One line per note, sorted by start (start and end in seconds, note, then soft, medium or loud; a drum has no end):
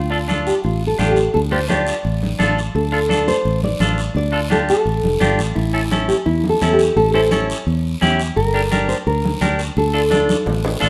0.00 0.51 D2 medium
0.00 0.27 F4 medium
0.10 0.17 D4 medium
0.10 0.17 F4 medium
0.10 0.18 A4 medium
0.28 0.53 D4 medium
0.28 0.54 F4 medium
0.28 0.54 A4 medium
0.28 high conga medium
0.28 short guiro medium
0.47 0.64 G4 medium
0.47 short guiro medium
0.64 0.93 A1 medium
0.64 0.87 F4 medium
0.64 long guiro medium
0.87 1.11 A4 medium
0.99 1.27 A1 medium
0.99 1.18 D4 medium
0.99 1.18 F4 medium
0.99 1.18 G4 medium
0.99 high conga medium
0.99 short guiro medium
1.11 1.33 G4 medium
1.16 short guiro medium
1.34 1.91 D2 loud
1.34 1.39 A4 medium
1.34 long guiro medium
1.51 1.58 D4 medium
1.51 1.58 F4 medium
1.51 1.58 G4 medium
1.51 1.70 C5 medium
1.69 1.94 D4 medium
1.69 1.94 F4 medium
1.69 1.94 G4 medium
1.69 2.54 D5 loud
1.69 high conga medium
1.69 short guiro medium
1.87 short guiro medium
2.05 2.33 A1 medium
2.05 long guiro medium
2.23 high conga medium
2.39 2.68 A1 medium
2.39 2.58 D4 medium
2.39 2.58 F4 medium
2.39 2.58 A4 loud
2.39 high conga medium
2.39 short guiro medium
2.58 short guiro medium
2.75 3.31 D2 loud
2.75 3.24 A4 medium
2.75 long guiro medium
2.92 2.99 D4 medium
2.92 2.99 F4 medium
2.92 2.99 A4 medium
3.09 3.34 D4 medium
3.09 3.35 F4 soft
3.09 3.35 A4 medium
3.09 high conga medium
3.09 short guiro medium
3.28 3.64 C5 loud
3.28 short guiro medium
3.45 3.73 A1 medium
3.45 long guiro medium
3.63 4.13 D5 medium
3.63 high conga medium
3.80 4.08 A1 medium
3.80 3.99 D4 medium
3.80 3.99 F4 medium
3.80 3.99 A4 medium
3.80 high conga medium
3.80 short guiro medium
3.98 short guiro medium
4.15 4.71 D2 loud
4.15 4.51 D5 loud
4.15 long guiro medium
4.32 4.39 D4 medium
4.32 4.39 F4 medium
4.32 4.39 A4 medium
4.50 4.75 D4 medium
4.50 4.75 F4 medium
4.50 4.75 G4 medium
4.50 4.57 A4 medium
4.50 high conga medium
4.50 short guiro medium
4.69 5.18 A4 medium
4.69 short guiro medium
4.85 5.00 A1 medium
4.85 long guiro medium
5.03 5.19 F1 medium
5.03 high conga medium
5.20 5.37 G1 medium
5.20 5.39 D4 medium
5.20 5.39 F4 medium
5.20 5.40 G4 medium
5.20 high conga medium
5.20 short guiro medium
5.39 5.54 A1 medium
5.39 short guiro medium
5.55 6.12 A1 medium
5.55 5.88 E4 medium
5.55 long guiro medium
5.73 5.80 C#4 medium
5.73 5.80 E4 medium
5.73 5.80 A4 medium
5.91 6.16 C#4 medium
5.91 6.16 E4 medium
5.91 6.16 A4 medium
5.91 high conga medium
5.91 short guiro medium
6.08 6.13 G4 medium
6.08 short guiro medium
6.26 6.54 E2 medium
6.26 6.48 E4 medium
6.26 long guiro medium
6.44 high conga medium
6.49 6.71 A4 medium
6.61 6.90 E2 medium
6.61 6.80 C#4 medium
6.61 6.80 E4 medium
6.61 6.80 A4 medium
6.61 high conga medium
6.61 short guiro medium
6.73 6.95 G4 medium
6.79 short guiro medium
6.96 7.52 A1 medium
6.96 7.13 A4 loud
6.96 long guiro medium
7.14 7.20 C#4 medium
7.14 7.20 E4 medium
7.14 7.21 A4 medium
7.14 7.31 C5 medium
7.31 7.56 C#4 medium
7.31 7.56 E4 medium
7.31 7.56 A4 medium
7.31 8.19 C#5 loud
7.31 high conga medium
7.31 short guiro medium
7.50 short guiro medium
7.67 7.95 E2 medium
7.67 long guiro medium
8.01 8.30 E2 medium
8.01 8.20 C#4 medium
8.01 8.20 E4 medium
8.01 8.20 G4 loud
8.01 high conga medium
8.01 short guiro medium
8.20 short guiro medium
8.36 8.93 G1 loud
8.36 8.88 A#4 loud
8.36 long guiro medium
8.54 8.60 D4 medium
8.54 8.61 G4 medium
8.54 8.61 A#4 medium
8.71 8.96 D4 medium
8.71 8.96 G4 medium
8.71 8.96 A#4 medium
8.71 high conga medium
8.71 short guiro medium
8.89 8.94 C5 medium
8.89 short guiro medium
9.07 9.35 D2 medium
9.07 9.56 A#4 medium
9.07 long guiro medium
9.25 high conga medium
9.41 9.69 D2 medium
9.41 9.60 D4 medium
9.41 9.60 G4 medium
9.41 9.60 A#4 medium
9.41 high conga medium
9.41 short guiro medium
9.59 short guiro medium
9.77 10.33 D2 loud
9.77 10.89 A4 medium
9.77 long guiro medium
9.94 10.00 D4 medium
9.94 10.00 F4 medium
9.94 10.00 A4 medium
10.10 10.36 D4 medium
10.10 10.36 F4 soft
10.10 10.36 A4 medium
10.10 high conga medium
10.10 short guiro medium
10.29 high conga medium
10.29 short guiro medium
10.46 10.75 A1 medium
10.46 low conga medium
10.46 long guiro medium
10.65 low conga medium
10.80 10.89 A1 medium
10.80 10.89 D4 medium
10.80 10.89 F4 medium
10.80 10.89 A4 loud
10.80 low conga medium
10.80 short guiro medium